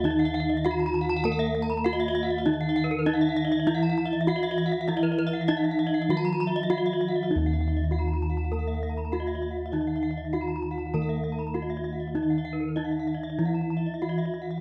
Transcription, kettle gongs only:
<<
  \new Staff \with { instrumentName = "Kettle gongs" } { \time 4/4 \tempo 4 = 99 << { r4 fes'8 r4. fes'8 r8 | r4 fes'8 r4. fes'8 r8 | r4 fes'8 r4. fes'8 r8 | r4 fes'8 r4. fes'8 r8 |
r4 fes'8 r4. fes'8 r8 | r4 fes'8 r4. fes'8 r8 | } \\ { ees'2. r4 | ees'2. r4 | fes'2. r4 | ees'2. r4 |
ees'2. r4 | ees'2. r4 | } >> }
  \new Staff \with { instrumentName = "Kettle gongs" } { \clef bass \time 4/4 << { r2 ees2~ | ees4 r4 fes2~ | fes4 r4 ees2~ | ees4 r2. |
r2 ees2~ | ees4 r4 fes2 | } \\ { ees,2 r2 | r1 | r1 | ees,1~ |
ees,2 r2 | r1 | } >> }
>>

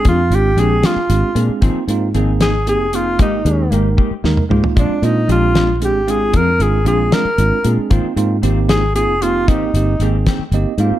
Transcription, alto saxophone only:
\new Staff \with { instrumentName = "Alto saxophone" } { \time 6/8 \key aes \lydian \tempo 4. = 76 f'8 g'8 aes'8 f'4 r8 | r4. aes'8 aes'8 f'8 | ees'4 r2 | d'8 ees'8 f'4 g'8 aes'8 |
bes'8 aes'8 aes'8 bes'4 r8 | r4. aes'8 aes'8 f'8 | ees'4 r2 | }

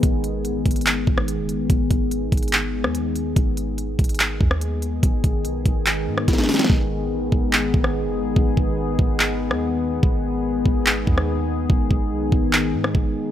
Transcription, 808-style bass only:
\new Staff \with { instrumentName = "808-style bass" } { \clef bass \time 4/4 \key gis \minor \tempo 4 = 144 gis,,4 a,,8 gis,,4 gis,,8. fis,,16. gis,,16. | gis,,8 gis,,4 gis,,4~ gis,,16 dis,4~ dis,16 | gis,,4. gis,,4 dis,4. | gis,,8 gis,,8 b,,8 gis,,4 gis,8 gis,,8 r8 |
gis,,4 a,,8 gis,,4 gis,,8. fis,,16. gis,,16. | gis,,8 gis,,4 gis,,4~ gis,,16 dis,4~ dis,16 | gis,,4. gis,,4 dis,4. | gis,,8 gis,,8 b,,8 gis,,4 gis,8 gis,,8 r8 | }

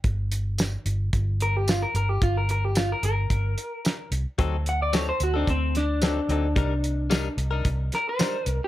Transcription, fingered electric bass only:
\new Staff \with { instrumentName = "Fingered electric bass" } { \clef bass \time 4/4 \key g \minor \tempo 4 = 110 g,,4. g,,8 g,,4. g,,8 | g,,4. g,,8 g,,8 r4 c,16 r16 | d,4. d,8 d,4. d,8 | c,4. c,8 c,8 r4 c,16 r16 | }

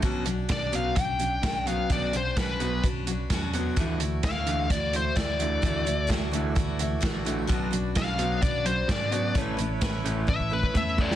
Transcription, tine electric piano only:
\new Staff \with { instrumentName = "Tine electric piano" } { \clef bass \time 4/4 \key d \major \tempo 4 = 129 b,,8 b,,8 r8 b,,8 b,,4 b,,4 | b,,8 b,,8 b,,8 b,,8 b,,4 e,4 | d,8 d,8 d,8 d,8 d,4 d,4 | d,8 d,8 r8 d,8 d,4 bes,,4 |
b,,8 b,,8 r8 b,,8 b,,4 gis,4 | a,,8 a,,8 a,,8 a,,8 a,,4 e,4 | }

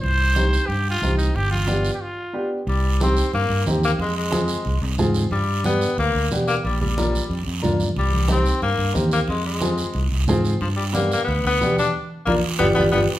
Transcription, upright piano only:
\new Staff \with { instrumentName = "Upright piano" } { \time 4/4 \key g \phrygian \tempo 4 = 182 r4 <c' ees' g'>8 r4. <c' ees' g'>8 r8 | r4 <b d' g'>8 r4. <b d' g'>8 r8 | \key c \minor r4 <c' ees' g'>8 r4. <c' ees' g'>8 r8 | r4 <c' f' aes'>8 r4. <c' f' aes'>8 r8 |
r4 <b d' g'>8 r4. <b d' g'>8 r8 | r4 <bes d' f'>8 r4. <bes d' f'>8 r8 | r4 <c' ees' g'>8 r4. <c' ees' g'>8 r8 | r4 <c' f' aes'>8 r4. <c' f' aes'>8 r8 |
r4 <b d' g'>8 r4. <b d' g'>8 r8 | r4 <bes d' f'>8 r8 <d' f' g'>8 <d' f' g'>8 <d' f' g'>8 r8 | }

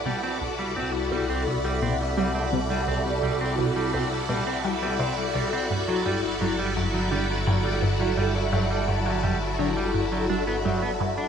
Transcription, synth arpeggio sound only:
\new Staff \with { instrumentName = "Synth arpeggio sound" } { \clef bass \time 4/4 \key c \lydian \tempo 4 = 85 c8 c,16 r16 c,8 c,16 r16 c,16 r16 b,8 g16 r16 c8 | c,16 r16 c,8 c,16 r16 c,16 r16 b,8 g16 r16 c8 c,16 r16 | g,8 g,16 r16 g,16 r16 fis,8 d16 r16 g,8 g,16 r16 g,8 | g,16 r16 g,16 r16 fis,8 d16 r16 g,8 g,16 r16 g,8 g,16 r16 | }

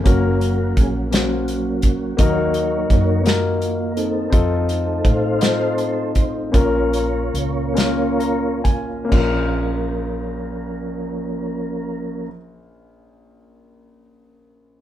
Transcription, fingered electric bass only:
\new Staff \with { instrumentName = "Fingered electric bass" } { \clef bass \time 6/8 \key bes \minor \tempo 4. = 51 ges,,4 bes,,2 | ees,4 ges,2 | f,4 a,2 | bes,,4 des,2 |
bes,,2.~ | bes,,2. | }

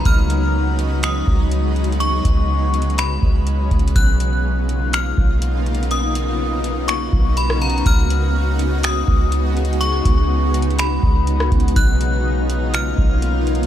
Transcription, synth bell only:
\new Staff \with { instrumentName = "Synth bell" } { \time 4/4 \key b \lydian \tempo 4 = 123 eis'''2 dis'''4 r4 | cis'''2 b''2 | fis'''2 eis'''4 r4 | dis'''2 cis'''4 b''8 ais''8 |
eis'''2 dis'''4 r4 | cis'''2 b''2 | fis'''2 eis'''4 r4 | }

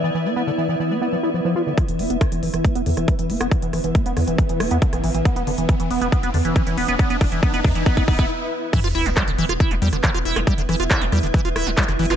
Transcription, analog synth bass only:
\new Staff \with { instrumentName = "Analog synth bass" } { \clef bass \time 4/4 \key c \major \tempo 4 = 138 r1 | r16 e,,16 e,,16 e,,16 r16 e,,16 e,,16 e,,16 r16 e,,16 e,16 e,,16 r16 e,,16 e,,16 e,,16 | r16 e,,16 e,,16 e,,16 r16 e,,16 e,16 e,,16 r16 e,,16 e,,16 e,16 r16 a,,16 a,,16 a,,16 | r16 e,,16 e,,16 e,,16 r16 e,,16 e,,16 e,,16 r16 e,,16 e,16 e,,16 r16 e,,16 e,,16 e,,16 |
r16 e,,16 e,,16 e,,16 r16 e,,16 e,16 e,,16 r16 e,,16 d,,16 d,,16 r4 | r16 e,,16 e,,16 e,,16 r16 e,,16 e,,16 e,,16 r16 e,,16 e,16 e,,16 r16 e,,16 e,,16 e,,16 | r16 e,,16 e,,16 e,,16 r16 e,,16 e,16 e,,16 r16 e,,16 d,,16 d,,16 r16 f,,16 f,,16 f,,16 | }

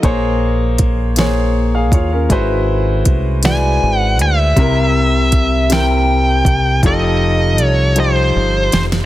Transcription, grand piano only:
\new Staff \with { instrumentName = "Grand piano" } { \time 6/8 \key bes \dorian \tempo 4. = 53 << { r2 r16 <aes' f''>16 <f' des''>16 <des' bes'>16~ | <des' bes'>16 r2 r8. | r2. | r2. | } \\ { <bes aes' c'' des''>4~ <bes aes' c'' des''>16 r16 <bes aes' c'' des''>4~ <bes aes' c'' des''>16 r16 | <aes e' ges' b' c''>4~ <aes e' ges' b' c''>16 r16 <aes e' ges' b' d''>4~ <aes e' ges' b' d''>16 r16 | <c c' e' bes'>4~ <c c' e' bes'>16 r16 <c c' e' bes'>4~ <c c' e' bes'>16 r16 | <f ees' g' a'>4~ <f ees' g' a'>16 r16 <f ees' g' c''>4~ <f ees' g' c''>16 r16 | } >> }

